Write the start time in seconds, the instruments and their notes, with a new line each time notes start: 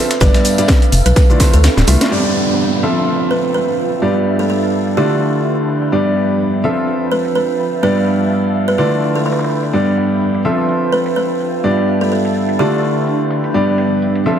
Already playing: grand piano C4 F4 A4 E5, ambient pad A4 E5 F5, kalimba B4
0.11 snare, closed hi-hat, tambourine, shaker
0.20 fm bass G1, grand piano G2 B3 D4 G4 D5, ambient pad D4, kalimba B4, kick, snare, closed hi-hat, tambourine, shaker
0.34 snare, tambourine, shaker
0.45 open hi-hat, tambourine, shaker
0.58 grand piano G2 B3 D4 G4 D5, closed hi-hat, tambourine, shaker
0.68 kick, snare, closed hi-hat, tambourine, shaker
0.82 closed hi-hat, tambourine, shaker
0.92 fm bass F1, open hi-hat, tambourine, shaker
1.06 fm bass B1, kalimba B4, closed hi-hat, tambourine, shaker
1.16 kalimba B4, kick, snare, closed hi-hat, tambourine, shaker
1.29 grand piano D3 A3 E4 F4 D5, tambourine, shaker
1.40 grand piano D3 A3 E4 F4 C5, kick, snare, open hi-hat, tambourine, shaker
1.53 fm bass D2, kalimba A4, closed hi-hat, tambourine, shaker
1.63 kalimba A4, snare, closed hi-hat, tambourine, shaker
1.77 fm bass D1, snare, tambourine, shaker
1.87 fm bass C2, grand piano A3 E4 F4 E5, snare, open hi-hat, tambourine, shaker
2.01 snare, closed hi-hat, shaker
2.11 grand piano G2 B3 D4 G4 D5, tambourine, downlifter
2.35 open hi-hat
2.73 closed hi-hat
2.83 grand piano F3 C4 F4 A4 E5, ambient pad F4, snare
2.96 snare
3.31 kalimba B4
3.37 ambient pad E5 A5
3.44 closed hi-hat
3.54 kalimba B4
3.78 tambourine
4.02 grand piano G2 B3 D4 G4 D5, ambient pad D4, tambourine
4.15 snare
4.26 tambourine
4.39 kalimba A4, ambient pad B4
4.50 kalimba A4
4.63 closed hi-hat
4.73 tambourine
4.87 closed hi-hat
4.97 grand piano D3 A3 E4 F4 D5, kalimba G4
5.21 ambient pad F3, tambourine
5.45 tambourine
5.69 snare, tambourine
5.82 closed hi-hat
5.92 grand piano G2 B3 D4 G4 D5, tambourine
6.16 open hi-hat
6.40 tambourine
6.54 closed hi-hat
6.64 grand piano F3 C4 F4 A4 E5, ambient pad F4, snare
6.77 snare
6.84 ambient pad E5
6.88 tambourine
7.12 kalimba B4, tambourine
7.18 ambient pad A5
7.25 closed hi-hat
7.35 kalimba B4, tambourine
7.59 tambourine
7.83 grand piano G2 B3 D4 G4 D5, ambient pad D4, kalimba B4
7.96 snare
8.07 tambourine
8.31 tambourine
8.44 closed hi-hat
8.54 tambourine
8.68 kalimba B4, closed hi-hat
8.78 grand piano D3 A3 E4 F4 D5, kalimba B4, tambourine
9.02 tambourine
9.16 kalimba A4
9.26 kalimba A4, snare, tambourine
9.32 snare, tambourine
9.39 snare, tambourine
9.44 snare, tambourine
9.50 snare, tambourine
9.63 closed hi-hat
9.73 grand piano G2 B3 D4 G4 D5, tambourine
9.85 ambient pad B4
9.97 ambient pad G5, open hi-hat
10.21 tambourine
10.34 closed hi-hat
10.45 grand piano F3 C4 F4 A4 E5, ambient pad F4, snare, tambourine
10.58 snare
10.69 tambourine
10.92 kalimba B4, tambourine
10.99 ambient pad E5 A5
11.06 closed hi-hat
11.16 kalimba B4, tambourine
11.40 tambourine
11.64 grand piano G2 B3 D4 G4 D5, ambient pad D4, tambourine
11.77 ambient pad B4, snare
11.88 tambourine
12.01 kalimba A4
12.11 kalimba A4, tambourine
12.25 closed hi-hat
12.35 tambourine
12.49 closed hi-hat
12.59 grand piano D3 A3 E4 F4 D5, kalimba G4, tambourine
12.83 tambourine
13.07 tambourine
13.31 snare, tambourine
13.44 closed hi-hat
13.54 grand piano G2 B3 D4 G4 D5, tambourine
13.76 ambient pad G5, open hi-hat
14.02 tambourine
14.15 closed hi-hat
14.26 grand piano F3 C4 F4 A4 E5, ambient pad F4, snare, tambourine